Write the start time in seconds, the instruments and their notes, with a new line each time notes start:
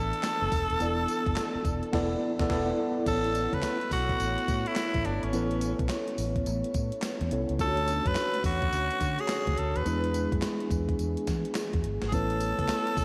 Already playing: fingered electric bass A1, french horn section E3 D4 A4, tine electric piano B3 E4 A4 D5, tenor saxophone A4
0.13 closed hi-hat
0.23 snare, clap, closed hi-hat, tambourine
0.42 fingered electric bass F#1
0.52 fingered electric bass E1, kick, open hi-hat, tambourine
0.70 fingered electric bass D#1, closed hi-hat
0.80 fingered electric bass E1, tine electric piano B3 E4 A4 D5, closed hi-hat, tambourine
1.08 closed hi-hat, tambourine
1.26 fingered electric bass F#1, kick, closed hi-hat
1.36 snare, clap, closed hi-hat, tambourine
1.55 muted fingered electric bass stroke
1.65 fingered electric bass E1, kick, closed hi-hat, tambourine
1.83 closed hi-hat
1.92 fingered electric bass E1, tine electric piano B3 E4 A4 D5, kick, snare, crash
2.39 fingered electric bass E1, tine electric piano B3 E4 A4 D5, kick, snare
2.49 fingered electric bass E1, tine electric piano B3 E4 A4 D5, kick, snare, crash
3.06 fingered electric bass A1, french horn section A3 B3 C#5, tine electric piano B3 C#4 E4 A4 C#5, tenor saxophone A4, kick, closed hi-hat, crash, tambourine
3.24 closed hi-hat
3.35 closed hi-hat, tambourine
3.53 fingered electric bass C#2, tenor saxophone B4, kick, closed hi-hat
3.62 snare, clap, closed hi-hat, tambourine
3.81 closed hi-hat
3.91 fingered electric bass B1, tenor saxophone F#4, kick, open hi-hat, tambourine
4.09 kick, closed hi-hat
4.20 fingered electric bass A1, closed hi-hat, tambourine
4.38 closed hi-hat
4.48 fingered electric bass A2, kick, closed hi-hat, tambourine
4.66 tenor saxophone E4, closed hi-hat
4.76 snare, clap, closed hi-hat, tambourine
4.94 fingered electric bass A1, kick, closed hi-hat
5.05 fingered electric bass G1, tenor saxophone D4, closed hi-hat
5.23 fingered electric bass G#1, tenor saxophone C#4, closed hi-hat
5.32 fingered electric bass A1, tine electric piano B3 C#4 E4 A4 B4, closed hi-hat, tambourine
5.51 closed hi-hat
5.61 closed hi-hat, tambourine
5.79 fingered electric bass B1, kick, closed hi-hat
5.89 snare, clap, closed hi-hat, tambourine
6.08 closed hi-hat
6.18 fingered electric bass A1, open hi-hat, tambourine
6.36 kick, closed hi-hat
6.46 fingered electric bass A1, closed hi-hat, tambourine
6.64 closed hi-hat
6.74 fingered electric bass A2, kick, closed hi-hat, tambourine
6.92 closed hi-hat
7.02 snare, clap, closed hi-hat, tambourine
7.21 fingered electric bass E2, closed hi-hat
7.31 fingered electric bass C2, tine electric piano B3 C#4 E4 A4 C#5, closed hi-hat
7.49 fingered electric bass C#2, closed hi-hat
7.59 fingered electric bass D2, french horn section D3 F#4, tine electric piano A3 C#4 D4 F4 C#5, tenor saxophone A4, kick, closed hi-hat, tambourine
7.67 tine electric piano F#4
7.77 closed hi-hat
7.88 closed hi-hat, tambourine
8.06 fingered electric bass F#2, tenor saxophone B4, kick, closed hi-hat
8.15 snare, clap, closed hi-hat, tambourine
8.34 closed hi-hat
8.44 fingered electric bass E2, tenor saxophone F#4, kick, open hi-hat, tambourine
8.62 kick, closed hi-hat
8.73 fingered electric bass D2, closed hi-hat, tambourine
8.91 closed hi-hat
9.01 fingered electric bass D3, kick, closed hi-hat, tambourine
9.19 tenor saxophone G#4, closed hi-hat
9.28 snare, clap, closed hi-hat, tambourine
9.47 fingered electric bass D2, kick, closed hi-hat
9.58 fingered electric bass D2, tenor saxophone A4, closed hi-hat
9.76 fingered electric bass D#2, tenor saxophone B4, closed hi-hat
9.86 fingered electric bass E2, french horn section E3 D4 G#4, tine electric piano G#3 B3 D4 E4 B4, closed hi-hat, tambourine
10.04 closed hi-hat
10.14 closed hi-hat, tambourine
10.32 fingered electric bass F#2, kick, closed hi-hat
10.42 snare, clap, closed hi-hat, tambourine
10.60 closed hi-hat
10.71 fingered electric bass E2, kick, closed hi-hat, tambourine
10.89 kick, closed hi-hat
10.99 fingered electric bass E2, closed hi-hat, tambourine
11.17 closed hi-hat
11.27 fingered electric bass E3, kick, snare, closed hi-hat, tambourine
11.45 closed hi-hat
11.55 snare, clap, closed hi-hat, tambourine
11.73 fingered electric bass E2, kick, closed hi-hat
11.84 fingered electric bass G1, closed hi-hat
12.02 fingered electric bass G#1, snare, closed hi-hat
12.08 tine electric piano A3, tenor saxophone G#4, kick
12.12 fingered electric bass A1, french horn section A3 B3 C#5, tine electric piano B3 C#4 E4 B4, tenor saxophone A4, closed hi-hat, tambourine
12.30 closed hi-hat
12.40 closed hi-hat, tambourine
12.59 fingered electric bass C#2, kick, closed hi-hat
12.68 snare, clap, closed hi-hat, tambourine
12.87 closed hi-hat
12.97 fingered electric bass B1, kick, open hi-hat, tambourine